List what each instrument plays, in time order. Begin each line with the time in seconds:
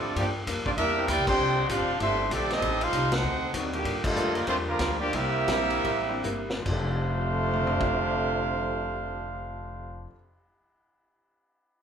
Already playing: upright bass A2, trombone section F3 A3 D4, trumpet section C4 F4 A4 D5
0.15 hollow-body jazz guitar G2 F3 A#3 D4, upright bass G2, trombone section F3 A#3 D4 G4, trumpet section A#3 F4 G4, kick, ride
0.19 trumpet section D5
0.47 upright bass F2, hollow-body jazz guitar G2 F3 A#3 D4, kick, hi-hat pedal, ride
0.66 trombone section F3 A#3 D4, trumpet section A#3 F4 G4 D5, kick
0.77 upright bass E2, hollow-body jazz guitar C3 E3 A#3 D4, trombone section G3 A#3 E4, trumpet section D4 G4 A#4 E5, kick, ride
0.97 trombone section E3 C4 D4 G4
1.07 upright bass D2, hollow-body jazz guitar C3 E3 A#3 D4, trombone section A#3 E4 G4, trumpet section E4 A#4 D5 G5, kick, hi-hat pedal, ride
1.18 upright bass C2
1.27 upright bass A#1, trombone section C4 D4 G4, trumpet section D4 A4 C5 G5, kick, crash
1.37 upright bass C2, hollow-body jazz guitar F3 A3 D4 G4
1.69 upright bass A1, hollow-body jazz guitar F3 A3 D4 G4, trombone section C4 D4 F4, trumpet section D4 A4 C5 F5, kick, hi-hat pedal, ride
1.79 upright bass F1
1.89 upright bass D1
2.00 upright bass G1, hollow-body jazz guitar F3 A3 D4 G4, trombone section A3 C4 E4, trumpet section D4 A4 C5 E5, kick, ride
2.30 upright bass A#1, trombone section D3 F3 A3 D4 G4, hollow-body jazz guitar F3 A3 D4 G4, trumpet section A4, kick, hi-hat pedal, ride
2.34 trumpet section C4 G4 D5
2.50 trombone section G3 C4 D#4, trumpet section C4 G4 A4 D#5, snare, ride
2.62 upright bass A1, hollow-body jazz guitar A2 G3 C4 D#4, kick, ride
2.81 trombone section G3 C4 F4, trumpet section D#4 A4 C5 F5, ride
2.92 upright bass C2, hollow-body jazz guitar A2 G3 C4 D#4, kick, hi-hat pedal, ride
3.12 trombone section A3 C4 F#4, trumpet section D#4 A4 C5 F#5, snare, ride
3.23 upright bass D2, hollow-body jazz guitar D3 F#3 C4 D#4
3.52 upright bass D#2, hollow-body jazz guitar D3 F#3 C4 D#4, trombone section D#3 C4 D4 F#4, kick, hi-hat pedal, ride
3.72 trombone section A#2 D3 G3, trumpet section A#3 D4 G4, ride
3.84 hollow-body jazz guitar G2 F3 A#3 D4, upright bass G2, kick, ride
4.03 trombone section D3 F3 A3, trumpet section G3 D4 F4 A4, kick, crash
4.16 upright bass F2, hollow-body jazz guitar G2 F3 A#3 D4, grand piano G3 A#3 D4 F4 A4, hi-hat pedal
4.34 trombone section D3 F3 A#3, trumpet section G3 D4 F4 A#4, ride
4.47 upright bass E2, hollow-body jazz guitar G2 F3 A#3 D4, grand piano G3 A#3 D4 F4 A#4, trumpet section A3 D4 F4 C5, trombone section C4, kick, ride
4.68 trombone section D3 F3 A#3, trumpet section G3 D4 F4 A#4
4.79 upright bass D2, hollow-body jazz guitar G2 F3 A#3 D4, kick, snare, hi-hat pedal, ride
5.00 trombone section F3 A#3 D4, trumpet section A#3 F4 G4 D5
5.13 upright bass C2, hollow-body jazz guitar C3 G3 A#3 E4, trombone section G3 A#3 E4, trumpet section C4 G4 A#4 E5, kick, ride
5.48 upright bass A#1, hollow-body jazz guitar C3 G3 A#3 E4, grand piano G3 C4 D4 E4 A#4, kick, snare, hi-hat pedal, ride
5.70 ride
5.83 upright bass A1, hollow-body jazz guitar C3 G3 A#3 E4, kick, ride
6.08 grand piano G3 C4 D4 E4 G4
6.23 upright bass G1, hollow-body jazz guitar C3 G3 A#3 E4, hi-hat pedal
6.50 snare
6.60 grand piano F2 F3, hollow-body jazz guitar F3
6.65 upright bass F1, trombone section F2 C3 D3 A3, hollow-body jazz guitar A3, grand piano D4 G4, trumpet section D4 A4 C5 F5, kick, crash
6.71 hollow-body jazz guitar D4 G4, grand piano A4
7.53 mid tom
7.67 floor tom
7.81 kick